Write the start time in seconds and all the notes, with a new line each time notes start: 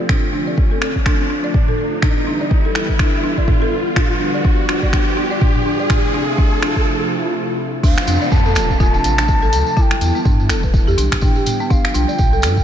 Already playing: F3 A3 F4, riser
0.09 D3 C4 D4, finger snap, kick, mid tom
0.33 F2 D4
0.47 D5
0.58 F2, kick
0.71 A4
0.82 A4, finger snap
0.96 kick
1.06 D4, finger snap, kick
1.30 D4
1.44 D5
1.54 kick, mid tom
1.68 A4, mid tom
1.78 A4
2.02 E3 G3 B3 D4 E4, finger snap, kick, mid tom
2.27 D4
2.41 D5
2.51 G2, kick
2.65 A4
2.75 A4, finger snap
2.89 kick
2.99 D4, finger snap, kick
3.13 E2
3.24 D4
3.38 D5, kick
3.48 kick, mid tom
3.62 A4
3.72 A4
3.96 D3 F3 G3 D4 F4, finger snap, kick, mid tom
4.20 D4
4.34 D5
4.44 D4, kick
4.69 G2 D4, finger snap
4.83 D5, kick
4.93 D4, finger snap, kick
5.17 D4
5.31 D5
5.41 D4, kick, mid tom
5.56 mid tom
5.66 D4
5.80 D5
5.90 C3 F3 A3 D4 E4, finger snap, kick, mid tom
6.14 D4
6.38 D4, kick
6.62 D4, finger snap
6.76 kick
7.83 D2 C3 F3 A3 D4 F4 F5, kick, tambourine, crash, downlifter
7.97 finger snap, tambourine
8.07 F2 D4, open hi-hat, tambourine
8.22 D5, tambourine
8.32 F2 A5, kick, mid tom, tambourine
8.46 A4, tambourine
8.55 D1 A4, finger snap, open hi-hat, tambourine
8.70 kick, tambourine
8.80 F4 G#5, kick, tambourine
8.94 D4 A5, tambourine
9.04 A1, open hi-hat, tambourine
9.18 D4, finger snap, tambourine
9.28 kick, tambourine
9.42 A4, tambourine
9.53 D2 A4, open hi-hat, tambourine
9.66 tambourine
9.77 D3 E3 G3 B3 E4 A5, kick, tambourine
9.82 G5
9.91 E4, finger snap, tambourine
10.01 E2, open hi-hat, tambourine
10.15 B3, tambourine
10.25 G2 D4, kick, mid tom, tambourine
10.40 tambourine
10.49 E1 A4, finger snap, open hi-hat, tambourine
10.63 B4, kick, tambourine
10.74 kick, tambourine
10.87 E2 G4, tambourine
10.98 B1 D4, open hi-hat, tambourine
11.11 B1, finger snap, kick, tambourine
11.21 D4 G5, kick, mid tom, tambourine
11.35 G4, tambourine
11.46 mid tom, open hi-hat, tambourine
11.60 B3, tambourine
11.70 G1 D3 F3 D4 F4 F5, kick, tambourine
11.84 finger snap, tambourine
11.94 B1 D4 G5, open hi-hat, tambourine
12.08 D5, tambourine
12.18 B1, kick, mid tom, tambourine
12.33 A4, tambourine
12.42 G2 A4, finger snap, open hi-hat, tambourine
12.57 kick, tambourine